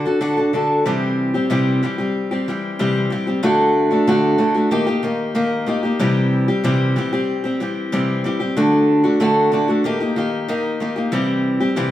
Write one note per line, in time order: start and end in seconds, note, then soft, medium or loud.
0.06 0.20 D4 soft
0.06 0.20 F#4 medium
0.06 0.21 A4 medium
0.21 0.37 D3 medium
0.21 0.37 D4 medium
0.21 0.37 F#4 medium
0.21 0.36 A4 medium
0.37 0.53 D4 soft
0.37 0.54 F#4 soft
0.37 0.53 A4 medium
0.53 0.85 D3 medium
0.53 0.86 D4 medium
0.53 0.86 F#4 medium
0.53 0.86 A4 medium
0.85 1.34 C3 medium
0.85 1.34 E3 medium
0.85 1.34 G3 medium
0.85 1.34 C4 loud
0.85 1.33 G4 medium
1.34 1.49 G3 soft
1.34 1.50 C4 medium
1.34 1.50 G4 medium
1.50 1.82 C3 medium
1.50 1.81 E3 medium
1.50 1.82 G3 medium
1.50 1.82 C4 medium
1.50 1.83 G4 medium
1.83 1.98 E3 medium
1.83 1.99 G3 medium
1.83 1.98 C4 medium
1.83 1.97 G4 medium
1.98 2.32 G3 soft
1.98 2.31 C4 medium
1.98 2.30 G4 medium
2.31 2.47 G3 medium
2.31 2.47 C4 medium
2.31 2.47 G4 medium
2.48 2.78 E3 medium
2.48 2.79 G3 medium
2.48 2.79 C4 medium
2.48 2.79 G4 medium
2.79 3.11 C3 medium
2.79 3.09 E3 medium
2.79 3.11 G3 medium
2.79 3.11 C4 medium
2.79 3.12 G4 medium
3.10 3.27 E3 medium
3.10 3.27 G3 medium
3.10 3.27 C4 medium
3.10 3.26 G4 medium
3.27 3.43 G3 soft
3.27 3.43 C4 medium
3.27 3.43 G4 medium
3.43 3.91 D3 loud
3.43 3.91 A3 loud
3.43 3.91 D4 medium
3.43 3.89 F#4 loud
3.91 4.06 A3 medium
3.91 4.07 D4 medium
3.91 4.07 F#4 medium
4.07 4.37 D3 medium
4.07 4.38 A3 medium
4.07 4.38 D4 medium
4.07 4.39 F#4 loud
4.38 4.55 D3 medium
4.38 4.55 A3 medium
4.38 4.54 D4 medium
4.38 4.53 F#4 medium
4.54 4.71 A3 medium
4.54 4.71 D4 medium
4.54 4.71 F#4 medium
4.71 4.87 D#3 medium
4.71 4.87 A#3 medium
4.71 4.87 D#4 medium
4.71 4.85 G4 loud
4.87 5.02 A#3 soft
4.87 5.03 D#4 medium
4.87 5.03 G4 medium
5.03 5.33 D#3 medium
5.03 5.34 A#3 medium
5.03 5.35 D#4 medium
5.03 5.35 G4 medium
5.35 5.65 D#3 medium
5.35 5.66 A#3 medium
5.35 5.67 D#4 medium
5.35 5.68 G4 medium
5.66 5.83 D#3 medium
5.66 5.84 A#3 medium
5.66 5.83 D#4 medium
5.66 5.82 G4 medium
5.83 6.00 A#3 medium
5.83 6.00 D#4 soft
5.83 5.99 G4 medium
5.99 6.48 C3 medium
5.99 6.48 E3 loud
5.99 6.48 G3 medium
5.99 6.47 C4 medium
5.99 6.47 G4 loud
6.48 6.63 G3 medium
6.48 6.63 C4 medium
6.48 6.64 G4 medium
6.64 6.96 C3 medium
6.64 6.95 E3 medium
6.64 6.95 G3 medium
6.64 6.96 C4 loud
6.64 6.97 G4 medium
6.96 7.12 E3 medium
6.96 7.12 G3 medium
6.96 7.12 C4 medium
6.96 7.11 G4 medium
7.13 7.45 G3 soft
7.13 7.44 C4 medium
7.13 7.43 G4 medium
7.44 7.60 G3 medium
7.44 7.60 C4 medium
7.44 7.60 G4 medium
7.60 7.91 E3 medium
7.60 7.92 G3 medium
7.60 7.92 C4 medium
7.60 7.92 G4 medium
7.92 8.24 C3 medium
7.92 8.23 E3 medium
7.92 8.24 G3 medium
7.92 8.25 C4 medium
7.92 8.25 G4 medium
8.24 8.40 E3 medium
8.24 8.40 G3 medium
8.24 8.40 C4 medium
8.24 8.39 G4 medium
8.40 8.57 G3 soft
8.40 8.57 C4 medium
8.40 8.56 G4 medium
8.57 9.05 D3 medium
8.57 9.05 A3 medium
8.57 9.04 D4 medium
8.57 9.02 F#4 loud
9.04 9.19 A3 soft
9.04 9.20 D4 medium
9.04 9.20 F#4 medium
9.20 9.51 D3 medium
9.20 9.52 A3 medium
9.20 9.52 D4 medium
9.20 9.53 F#4 loud
9.52 9.68 D3 medium
9.52 9.69 A3 medium
9.52 9.68 D4 medium
9.52 9.67 F#4 medium
9.68 9.85 A3 medium
9.68 9.85 D4 medium
9.68 9.84 F#4 medium
9.84 10.00 D#3 medium
9.84 10.01 A#3 medium
9.84 10.00 D#4 medium
9.84 9.99 G4 medium
10.00 10.16 A#3 soft
10.00 10.16 D#4 medium
10.00 10.17 G4 medium
10.16 10.47 D#3 medium
10.16 10.48 A#3 medium
10.16 10.48 D#4 medium
10.16 10.49 G4 medium
10.48 10.79 D#3 medium
10.48 10.80 A#3 medium
10.48 10.81 D#4 medium
10.48 10.81 G4 medium
10.80 10.97 D#3 medium
10.80 10.97 A#3 medium
10.80 10.96 D#4 medium
10.80 10.95 G4 medium
10.96 11.12 A#3 soft
10.96 11.13 D#4 medium
10.96 11.12 G4 medium
11.12 11.61 C3 medium
11.12 11.61 E3 medium
11.12 11.61 G3 medium
11.12 11.60 C4 medium
11.12 11.59 G4 medium
11.60 11.76 G3 medium
11.60 11.76 C4 medium
11.60 11.76 G4 medium
11.76 11.91 C3 medium
11.76 11.91 E3 medium
11.76 11.91 G3 medium
11.76 11.91 C4 medium
11.76 11.91 G4 medium